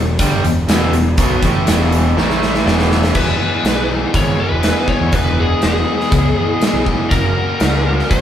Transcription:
Already playing: picked electric bass E1, overdriven electric guitar E2 B2
0.19 picked electric bass G1, overdriven electric guitar G2 D3 G3, kick, closed hi-hat
0.42 picked electric bass E1, overdriven electric guitar E2 B2, closed hi-hat
0.67 picked electric bass E1, overdriven electric guitar E2 B2 E3, snare, closed hi-hat
0.91 picked electric bass E1, overdriven electric guitar E2, closed hi-hat
0.95 overdriven electric guitar B2
1.18 picked electric bass B1, overdriven electric guitar B2 F#3 B3, kick, closed hi-hat
1.42 picked electric bass A1, overdriven electric guitar A2 E3 A3, kick, closed hi-hat
1.67 picked electric bass E1, overdriven electric guitar E2 B2 E3, snare, closed hi-hat
1.92 closed hi-hat
2.16 picked electric bass A1, overdriven electric guitar A2 E3 A3, snare
2.30 snare
2.43 snare
2.55 snare
2.65 picked electric bass E1, overdriven electric guitar E2 B2 E3, snare
2.79 snare
2.91 snare
3.04 snare
3.14 picked electric bass E1, overdriven electric guitar E2 B2 E3 G#3 B3 G#4, twelve-string acoustic guitar E4, lead electric guitar B4, kick, crash
3.38 overdriven electric guitar E2 B2 E3 G#3 B3 G#4, twelve-string acoustic guitar E4
3.63 picked electric bass B1, overdriven electric guitar E2 B2 E3 G#3 B3 G#4, twelve-string acoustic guitar E4, snare, closed hi-hat
3.88 overdriven electric guitar E2 B2 E3 G#3 B3 G#4, twelve-string acoustic guitar E4
4.12 picked electric bass G#1, overdriven electric guitar E2 B2 E3 G#3 B3 G#4, twelve-string acoustic guitar E4, kick, closed hi-hat
4.16 lead electric guitar C#5
4.37 overdriven electric guitar E2 B2 E3 G#3 B3 G#4, twelve-string acoustic guitar E4, lead electric guitar B4
4.52 picked electric bass E1
4.62 overdriven electric guitar E2 B2 E3 G#3 B3 G#4, twelve-string acoustic guitar E4, snare, closed hi-hat
4.87 overdriven electric guitar E2 B2 E3 G#3 B3 G#4, twelve-string acoustic guitar E4, lead electric guitar C#5, kick
5.01 picked electric bass E2
5.12 picked electric bass E1, overdriven electric guitar E2 B2 E3 G#3 B3 G#4, twelve-string acoustic guitar E4, lead electric guitar B4, kick, closed hi-hat
5.35 overdriven electric guitar E2 B2 E3 G#3 B3 G#4, twelve-string acoustic guitar E4
5.40 lead electric guitar G#4
5.60 picked electric bass E1, overdriven electric guitar E2 B2 E3 G#3 B3 G#4, lead electric guitar G#4, snare, closed hi-hat
5.84 overdriven electric guitar E2 B2 E3 G#3 B3 G#4, twelve-string acoustic guitar E4
6.01 snare
6.10 picked electric bass C#2, overdriven electric guitar E2 B2 E3 G#3 B3 G#4, twelve-string acoustic guitar E4, kick, closed hi-hat
6.35 overdriven electric guitar E2 B2 E3 G#3 B3 G#4, twelve-string acoustic guitar E4
6.60 overdriven electric guitar E2 B2 E3 G#3 B3 G#4, twelve-string acoustic guitar E4, snare, closed hi-hat
6.74 picked electric bass B1
6.85 overdriven electric guitar E2 B2 E3 G#3 B3 G#4, twelve-string acoustic guitar E4, kick
7.10 picked electric bass F#1, overdriven electric guitar F#2 C#3 F#3 A#3 C#4 F#4, lead electric guitar A#4, kick, closed hi-hat
7.34 overdriven electric guitar F#2 C#3 F#3 A#3 C#4 F#4
7.60 picked electric bass C#2, overdriven electric guitar F#2 C#3 F#3 A#3 C#4 F#4, snare, closed hi-hat
7.84 overdriven electric guitar F#2 C#3 F#3 A#3 C#4 F#4
7.99 snare
8.09 picked electric bass A#1, overdriven electric guitar F#2 C#3 F#3 A#3 C#4 F#4, lead electric guitar C#5, kick, closed hi-hat

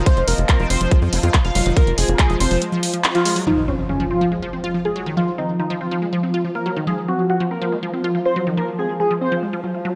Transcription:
Already playing: synth texture F3, ambient pad F4 C5 D#5
0.06 synth arpeggio sound F3, analog synth lead C5, kick, closed hi-hat
0.17 analog synth bass F1, closed hi-hat
0.28 analog synth bass F1, synth arpeggio sound C4, analog synth lead A#4, open hi-hat
0.38 analog synth bass F1, closed hi-hat
0.49 synth arpeggio sound F3, wobble bass C4, analog synth lead A#4, kick, clap, closed hi-hat
0.60 analog synth bass F1, synth arpeggio sound F3
0.70 analog synth bass F1, synth arpeggio sound C4, analog synth lead C5, open hi-hat
0.81 analog synth bass F1, synth arpeggio sound F3, closed hi-hat
0.91 synth arpeggio sound G#3, kick, closed hi-hat
1.02 analog synth bass F2, synth arpeggio sound F3
1.13 analog synth bass F1, wobble bass A#3, synth arpeggio sound C4, open hi-hat
1.23 analog synth bass F2, wobble bass A#3, synth arpeggio sound F4, closed hi-hat
1.34 synth arpeggio sound F3, kick, clap, closed hi-hat
1.45 analog synth bass F1, synth arpeggio sound F4, analog synth lead F5, closed hi-hat
1.55 analog synth bass F1, synth arpeggio sound F#3, open hi-hat
1.66 analog synth bass F1, synth arpeggio sound D#3, closed hi-hat
1.77 synth arpeggio sound F3, analog synth lead A#4, kick, closed hi-hat
1.87 analog synth bass F1, closed hi-hat
1.98 analog synth bass F1, synth arpeggio sound C4, analog synth lead G#4, open hi-hat
2.08 analog synth bass F1, wobble bass A#3, closed hi-hat
2.19 synth arpeggio sound F3, analog synth lead G#4, kick, clap, closed hi-hat
2.30 analog synth bass F1, synth arpeggio sound F3, closed hi-hat
2.40 analog synth bass F1, synth arpeggio sound C4, analog synth lead C5, open hi-hat
2.51 analog synth bass F1, synth arpeggio sound F3, open hi-hat
2.62 synth arpeggio sound G#3, closed hi-hat
2.72 synth arpeggio sound F3
2.83 synth arpeggio sound F3, open hi-hat
2.94 synth arpeggio sound F3, closed hi-hat
3.04 synth arpeggio sound C4, clap, closed hi-hat
3.15 synth arpeggio sound F3, analog synth lead F4, closed hi-hat
3.25 synth arpeggio sound G#3, open hi-hat
3.36 synth arpeggio sound F#3, open hi-hat
3.47 synth arpeggio sound F3, synth texture F3, analog synth lead D#4, crash, impact
3.68 synth arpeggio sound C4, analog synth lead C#4
3.89 synth arpeggio sound F3, analog synth lead C#4
3.95 ambient pad F5
4.00 synth arpeggio sound F3
4.11 synth arpeggio sound C4, analog synth lead F4
4.21 synth arpeggio sound F3
4.32 synth arpeggio sound G#3
4.42 synth arpeggio sound F3
4.53 synth arpeggio sound C4
4.64 synth arpeggio sound F4
4.74 synth arpeggio sound F3
4.85 synth arpeggio sound F4, analog synth lead G#4
4.96 synth arpeggio sound F#3
5.06 synth arpeggio sound D#3
5.17 synth arpeggio sound F3, analog synth lead F4
5.38 synth arpeggio sound C4, analog synth lead D#4
5.60 synth arpeggio sound F3, analog synth lead D#4
5.70 synth arpeggio sound F3
5.81 synth arpeggio sound C4, analog synth lead F4
5.91 synth arpeggio sound F3
6.02 synth arpeggio sound G#3
6.13 synth arpeggio sound F3
6.23 synth arpeggio sound C4
6.34 synth arpeggio sound F4
6.45 synth arpeggio sound F3
6.55 synth arpeggio sound F4, analog synth lead A#4
6.66 synth arpeggio sound F#3
6.76 synth arpeggio sound D#3
6.87 synth arpeggio sound F3, analog synth lead G#4
7.08 synth arpeggio sound C4, analog synth lead F#4
7.30 synth arpeggio sound F3, analog synth lead F#4
7.40 synth arpeggio sound F3
7.51 synth arpeggio sound C4, analog synth lead A#4
7.62 synth arpeggio sound F3
7.72 synth arpeggio sound G#3
7.83 synth arpeggio sound F3
7.94 synth arpeggio sound C4
8.04 synth arpeggio sound F4
8.15 synth arpeggio sound F3
8.25 synth arpeggio sound F4, analog synth lead C5
8.36 synth arpeggio sound F#3
8.47 synth arpeggio sound D#3
8.57 synth arpeggio sound F3, analog synth lead A#4
8.79 synth arpeggio sound C4, analog synth lead G#4
9.00 synth arpeggio sound F3, analog synth lead G#4
9.11 synth arpeggio sound F3
9.21 synth arpeggio sound C4, analog synth lead C5
9.32 synth arpeggio sound F3
9.43 synth arpeggio sound G#3
9.53 synth arpeggio sound F3
9.64 synth arpeggio sound F#3
9.74 synth arpeggio sound F4
9.85 synth arpeggio sound F#3

